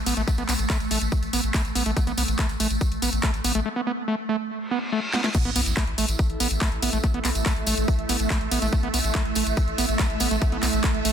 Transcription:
Already playing: A3
0.06 A1 B3, open hi-hat, tambourine
0.17 A1 A3, closed hi-hat, tambourine
0.28 A3, kick, closed hi-hat, tambourine
0.38 A1 B3, closed hi-hat, tambourine
0.49 B1 B3, clap, open hi-hat, tambourine
0.59 A1, closed hi-hat, tambourine
0.70 A3, kick, clap, closed hi-hat, tambourine
0.80 A1, closed hi-hat, tambourine
0.91 A1 A3, open hi-hat, tambourine
1.01 A1, closed hi-hat, tambourine
1.12 kick, closed hi-hat, tambourine
1.22 A1, closed hi-hat, tambourine
1.33 A1 B3, open hi-hat, tambourine
1.44 A1, closed hi-hat, tambourine
1.54 A3, kick, clap, closed hi-hat, tambourine
1.65 A1, closed hi-hat, tambourine
1.75 A1 B3, open hi-hat, tambourine
1.86 A1 A3, closed hi-hat, tambourine
1.97 A3, kick, closed hi-hat, tambourine
2.07 A1 B3, closed hi-hat, tambourine
2.17 B1 B3, open hi-hat, tambourine
2.28 A1, closed hi-hat, tambourine
2.38 A3, kick, clap, closed hi-hat, tambourine
2.49 A1, closed hi-hat, tambourine
2.60 A1 A3, open hi-hat, tambourine
2.70 A1, closed hi-hat, tambourine
2.81 kick, closed hi-hat, tambourine
2.92 A1, closed hi-hat, tambourine
3.02 A1 B3, open hi-hat, tambourine
3.13 A1, closed hi-hat, tambourine
3.23 A3, kick, clap, closed hi-hat, tambourine
3.33 A1, closed hi-hat, tambourine
3.44 A1 B3, open hi-hat, tambourine
3.55 A1 A3, closed hi-hat, tambourine
3.66 A3
3.76 B3
3.87 B3
4.08 A3
4.29 A3
4.50 reverse cymbal
4.71 B3
4.92 A3
5.13 B3, snare
5.24 A3, snare
5.35 A3 E4, kick, closed hi-hat, tambourine, crash, sub drop
5.45 A1 B3, closed hi-hat
5.56 B1 B3, open hi-hat, tambourine
5.66 A1, closed hi-hat, tambourine
5.77 A3, kick, clap, closed hi-hat
5.87 A1 A4, closed hi-hat
5.98 A1 A3, open hi-hat, tambourine
6.08 A1, closed hi-hat, tambourine
6.19 E5, kick, closed hi-hat, tambourine
6.30 A1, closed hi-hat
6.40 A1 B3, open hi-hat, tambourine
6.51 A1, closed hi-hat, tambourine
6.61 A3, kick, clap, closed hi-hat, tambourine
6.72 A1, closed hi-hat
6.82 A1 B3, open hi-hat, tambourine
6.93 A1 A3, closed hi-hat, tambourine
7.03 A3, kick, closed hi-hat, tambourine
7.14 A1 B3, closed hi-hat
7.25 B1 B3, clap, open hi-hat, tambourine
7.35 A1, closed hi-hat, tambourine
7.46 A3, kick, clap, closed hi-hat, tambourine
7.56 A1, closed hi-hat
7.66 A1 A3, open hi-hat, tambourine
7.77 A1, closed hi-hat, tambourine
7.88 kick, closed hi-hat, tambourine
7.99 A1, closed hi-hat
8.09 A1 B3, open hi-hat, tambourine
8.19 A1, closed hi-hat, tambourine
8.30 A3, kick, clap, closed hi-hat, tambourine
8.41 A1, closed hi-hat
8.51 A1 B3, open hi-hat, tambourine
8.62 A1 A3, closed hi-hat, tambourine
8.73 A3, kick, closed hi-hat
8.83 A1 B3, closed hi-hat
8.94 B1 B3, open hi-hat, tambourine
9.04 A1, closed hi-hat, tambourine
9.15 A3, kick, clap, closed hi-hat
9.25 A1, closed hi-hat
9.35 A1 A3, open hi-hat, tambourine
9.46 A1, closed hi-hat, tambourine
9.57 kick, closed hi-hat, tambourine
9.68 A1, closed hi-hat
9.78 A1 B3, open hi-hat, tambourine
9.89 A1, closed hi-hat, tambourine
9.99 A3, kick, clap, closed hi-hat, tambourine
10.10 A1, closed hi-hat
10.20 A1 B3, open hi-hat, tambourine
10.31 A1 A3, closed hi-hat, tambourine
10.41 A3, kick, closed hi-hat, tambourine
10.52 A1 B3, closed hi-hat
10.63 B1 B3, clap, open hi-hat, tambourine
10.73 A1, closed hi-hat, tambourine
10.83 A3, kick, clap, closed hi-hat, tambourine
10.94 A1, closed hi-hat
11.05 A1 A3, open hi-hat, tambourine

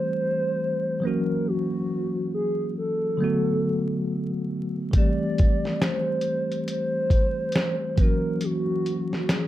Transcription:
Already playing: E3 G3 A3 C4 G4 C5
1.00 E3 F#3 A#3
1.04 C#4 F#4 A#4
1.47 F#4
2.34 G#4
2.78 A4
3.17 D3 F#3 A3
3.22 B3 F#4
4.91 E3 G3 A3, kick, closed hi-hat
4.96 C4 G4 D5
5.38 kick, closed hi-hat
5.65 snare
5.82 C5, snare, closed hi-hat
6.21 closed hi-hat
6.52 closed hi-hat
6.68 C5, closed hi-hat
7.10 kick, closed hi-hat
7.52 snare, closed hi-hat
7.96 E3 F#3 A#3 A#4, kick, closed hi-hat
8.01 C#4 F#4
8.41 F#4, closed hi-hat
8.86 closed hi-hat
9.13 snare
9.29 G#4, snare, closed hi-hat

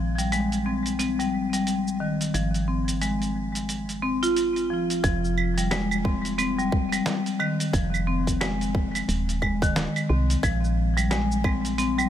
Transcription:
Already playing: A#1 F3
0.18 G3, open hi-hat, shaker
0.32 G#3, open hi-hat, shaker
0.52 open hi-hat, shaker
0.66 C4
0.86 open hi-hat, shaker
0.99 C4, open hi-hat, shaker
1.19 G3, open hi-hat, shaker
1.53 G3, open hi-hat, shaker
1.67 open hi-hat, shaker
1.88 shaker
2.00 D#3
2.21 open hi-hat, shaker
2.34 G#1 F3, open hi-hat, shaker
2.54 open hi-hat, shaker
2.68 C4
2.88 open hi-hat, shaker
3.01 G#3, open hi-hat, shaker
3.22 open hi-hat, shaker
3.55 open hi-hat, shaker
3.69 open hi-hat, shaker
3.89 open hi-hat, shaker
4.03 C4
4.23 F4, open hi-hat, shaker
4.36 open hi-hat, shaker
4.56 open hi-hat, shaker
4.70 F3
4.90 open hi-hat, shaker
5.04 F1 F3, kick, open hi-hat, shaker
5.24 shaker
5.38 claves
5.58 G3, open hi-hat, shaker
5.71 G#3, snare, open hi-hat, shaker
5.91 claves, shaker
6.05 C4, kick
6.25 open hi-hat, shaker
6.38 C4, open hi-hat, claves, shaker
6.59 G3, shaker
6.72 kick
6.92 G3, open hi-hat, claves, shaker
7.06 snare, open hi-hat, shaker
7.26 open hi-hat, shaker
7.40 D#3, claves
7.60 open hi-hat, shaker
7.73 F1 F3, kick, open hi-hat, shaker
7.94 claves, shaker
8.07 C4
8.27 kick, open hi-hat, shaker
8.41 G#3, snare, open hi-hat, claves, shaker
8.61 open hi-hat, shaker
8.75 kick
8.95 open hi-hat, claves, shaker
9.09 D#1, open hi-hat, shaker
9.29 open hi-hat, shaker
9.42 G#3, kick, claves
9.62 D#3, kick, open hi-hat, shaker
9.76 snare, open hi-hat, shaker
9.96 open hi-hat, claves, shaker
10.09 C2 C4
10.30 open hi-hat, shaker
10.43 A#1 F3, kick, open hi-hat, claves, shaker
10.64 shaker
10.97 G3, open hi-hat, claves, shaker
11.11 G#3, snare, open hi-hat, shaker
11.32 shaker
11.44 C4, kick, claves
11.65 open hi-hat, shaker
11.78 C4, open hi-hat, shaker
11.98 G3, claves, shaker

